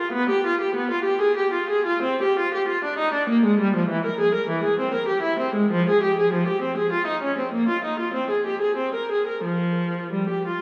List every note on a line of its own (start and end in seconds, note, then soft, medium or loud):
0.00 0.12 F4 medium
0.12 0.27 B3 medium
0.30 0.44 G4 medium
0.46 0.60 F4 medium
0.61 0.75 G4 medium
0.75 0.90 B3 medium
0.91 1.06 F4 medium
1.04 1.20 G4 medium
1.21 1.36 G#4 medium
1.37 1.52 G4 medium
1.53 1.69 F4 medium
1.70 1.86 G#4 medium
1.86 2.02 F4 medium
2.02 2.19 C4 medium
2.22 2.37 G4 medium
2.39 2.53 F4 medium
2.54 2.68 G4 medium
2.68 2.82 F4 medium
2.84 2.98 D4 medium
2.98 3.13 D#4 medium
3.14 3.28 D4 medium
3.30 3.43 A#3 medium
3.45 3.59 G#3 medium
3.60 3.73 G3 medium
3.76 3.89 F3 medium
3.89 4.03 E3 medium
4.06 4.19 A#4 medium
4.20 4.33 G#4 medium
4.35 4.48 A#4 medium
4.49 4.63 E3 medium
4.64 4.78 G#4 medium
4.79 4.93 C4 medium
4.94 5.08 A#4 medium
5.08 5.23 G4 medium
5.22 5.38 E4 medium
5.39 5.54 C4 medium
5.55 5.71 G#3 medium
5.71 5.87 F3 medium
5.89 6.03 G#4 medium
6.03 6.17 G4 medium
6.19 6.33 G#4 medium
6.33 6.47 F3 medium
6.47 6.62 G4 medium
6.62 6.77 C4 medium
6.77 6.92 G#4 medium
6.92 7.07 F4 medium
7.07 7.22 D#4 medium
7.22 7.37 C#4 medium
7.38 7.53 C4 soft
7.54 7.68 A#3 medium
7.69 7.83 F4 medium
7.85 7.99 D#4 medium
7.99 8.14 F4 medium
8.14 8.29 C4 medium
8.30 8.45 G#4 medium
8.46 8.62 G4 medium
8.61 8.77 G#4 soft
8.76 8.93 C4 medium
8.95 9.10 A#4 medium
9.11 9.27 G#4 soft
9.27 9.44 A#4 soft
9.43 10.11 F3 medium
10.12 10.30 G3 soft
10.29 10.47 G4 soft
10.47 10.62 F4 medium